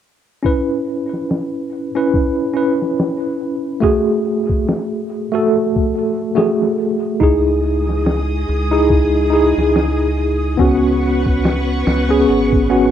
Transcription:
0.43 tine electric piano C#4 E4 B4, kick, open hi-hat
0.87 open hi-hat
1.13 snare
1.29 snare, open hi-hat
1.54 closed hi-hat
1.71 open hi-hat
1.95 tine electric piano C#4 E4 B4
2.14 kick, open hi-hat
2.54 tine electric piano C#4 E4 B4, open hi-hat
2.82 snare
2.98 snare, open hi-hat
3.40 open hi-hat
3.80 tine electric piano A3 F#4 G#4, kick, open hi-hat
4.07 closed hi-hat
4.25 open hi-hat
4.49 kick
4.67 snare, open hi-hat
5.09 open hi-hat
5.32 tine electric piano A3 F#4 A4
5.52 open hi-hat
5.76 kick
5.94 open hi-hat
6.35 tine electric piano A3 F#4 G#4, snare, open hi-hat
6.62 snare
6.78 open hi-hat
7.20 fingered electric bass C#2, tine electric piano D#4 E4 G#4, string machine G#4 D#6, kick, open hi-hat
7.63 open hi-hat
7.89 snare
8.05 snare, open hi-hat
8.30 closed hi-hat
8.48 fingered electric bass C#2, open hi-hat
8.71 tine electric piano D#4 E4 G#4
8.90 kick, open hi-hat
9.30 tine electric piano D#4 E4 G#4, open hi-hat
9.57 fingered electric bass C#2, snare
9.74 snare, open hi-hat
10.17 open hi-hat
10.57 fingered electric bass C#2, tine electric piano B3 C#4 F#4, string machine B4 F#5 C#6, kick, open hi-hat
10.84 closed hi-hat
11.02 open hi-hat
11.26 kick
11.44 snare, open hi-hat
11.86 fingered electric bass C#2, snare, open hi-hat
12.09 tine electric piano B3 C#4 G#4
12.28 fingered electric bass G#1, open hi-hat
12.52 kick
12.70 tine electric piano B3 C#4 F#4, open hi-hat

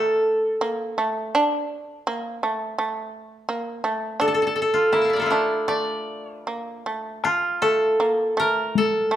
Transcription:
Already playing: shamisen A3, koto A4 D5 E5
0.61 shamisen A#3
0.98 shamisen A3
1.35 shamisen D4
2.07 shamisen A#3
2.43 shamisen A3
2.78 shamisen A3
3.49 shamisen A#3
3.84 shamisen A3
4.20 shamisen D4, koto A4
4.28 koto A4
4.34 koto A4
4.42 koto A4
4.47 koto A4
4.56 koto A4
4.62 koto A4
4.74 koto F4
4.92 shamisen A#3, koto E4
5.02 koto F5 A5
5.10 koto D5 E5
5.16 koto A4 A#4
5.22 koto F4
5.26 koto E4
5.30 shamisen A3, koto D4
5.68 shamisen A3, koto D5
6.44 shamisen A#3, koto A#4
6.86 shamisen A3
7.24 koto F4, taiko rim
7.62 shamisen A3, koto A4
8.00 shamisen A#3
8.37 shamisen A3, koto A#4
8.75 koto A4, taiko high
9.11 shamisen A3

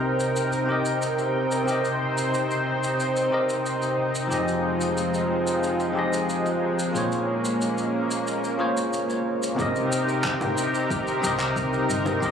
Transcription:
Already playing: fingered electric bass C2, tine electric piano C3 C4 G4 A#4 D#5, analog synth pad C3 C4 D#4 A#4 G5
0.20 shaker
0.36 shaker
0.53 shaker
0.65 tine electric piano C3 C4 G4
0.70 tine electric piano A#4 D#5
0.86 shaker
1.02 shaker
1.19 shaker
1.52 shaker
1.64 tine electric piano C3 C4 G4, analog synth pad C5
1.68 tine electric piano A#4 D#5, shaker
1.85 shaker
2.18 shaker
2.34 shaker
2.51 shaker
2.84 shaker
3.00 shaker
3.17 shaker
3.31 tine electric piano C3 C4 G4 A#4 D#5
3.50 shaker
3.66 shaker
3.82 shaker
4.15 shaker
4.27 fingered electric bass F1, tine electric piano F3 C4 G4, analog synth pad F3 G#3
4.32 tine electric piano G#4 D#5, shaker
4.48 shaker
4.81 shaker
4.98 shaker
5.14 shaker
5.47 shaker
5.63 shaker
5.80 shaker
5.92 tine electric piano F3 C4 G4
5.97 tine electric piano G#4 D#5
6.13 shaker
6.30 shaker
6.46 shaker
6.79 shaker
6.91 fingered electric bass A#1, tine electric piano A#3 F4 G#4, analog synth pad A#3 C#4
6.96 tine electric piano C5 C#5, shaker
7.12 shaker
7.45 shaker
7.62 shaker
7.78 shaker
8.11 shaker
8.27 shaker
8.44 shaker
8.58 tine electric piano A#3 F4 G#4 C5 C#5
8.77 shaker
8.93 shaker
9.10 shaker
9.43 shaker
9.55 tine electric piano C3 C4 G4, mid tom
9.59 analog synth pad C3 C4 D#4 G4 A#4, tine electric piano A#4 D#5, kick, shaker
9.76 shaker
9.92 shaker
10.09 shaker
10.24 kick, clap, shaker
10.41 mid tom, high bongo, shaker
10.58 shaker
10.75 shaker
10.90 kick, shaker
11.08 shaker
11.20 fingered electric bass C2, tine electric piano C3 C4 G4, mid tom, shaker
11.25 tine electric piano A#4 D#5
11.40 clap, shaker
11.56 kick, shaker
11.73 shaker
11.89 fingered electric bass G1, shaker
12.05 mid tom, high bongo, shaker
12.19 fingered electric bass C2, tine electric piano C3 C4 G4, kick
12.23 analog synth pad F4, tine electric piano A#4 D#5, shaker

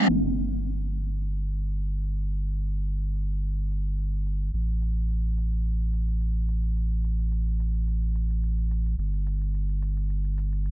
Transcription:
0.09 sub bass G1
0.37 shaker
0.52 shaker
0.65 shaker
0.80 shaker
0.93 shaker
1.08 shaker
1.21 shaker
1.36 shaker
1.49 shaker
1.63 shaker
1.76 shaker
1.91 shaker
2.04 shaker
2.19 shaker
2.32 shaker
2.47 shaker
2.60 shaker
2.74 shaker
2.88 shaker
3.02 shaker
3.15 shaker
3.30 shaker
3.43 shaker
3.58 shaker
3.71 shaker
3.86 shaker
3.99 shaker
4.14 shaker
4.26 shaker
4.41 shaker
4.53 sub bass A1, shaker
4.69 shaker
4.82 shaker
4.97 shaker
5.10 shaker
5.25 shaker
5.38 shaker
5.52 shaker
5.65 shaker
5.80 shaker
5.93 shaker
6.08 shaker
6.21 shaker
6.36 shaker
6.48 shaker
6.63 shaker
6.77 shaker
6.91 shaker
7.04 shaker
7.19 shaker
7.32 shaker
7.47 shaker
7.60 shaker
7.74 shaker
7.87 shaker
8.02 shaker
8.15 shaker
8.30 shaker
8.43 shaker
8.58 shaker
8.71 shaker
8.86 shaker
8.98 sub bass G1, shaker
9.13 shaker
9.26 shaker
9.41 shaker
9.54 shaker
9.69 shaker
9.82 shaker
9.97 shaker
10.10 shaker
10.24 shaker
10.38 shaker
10.52 shaker
10.65 shaker

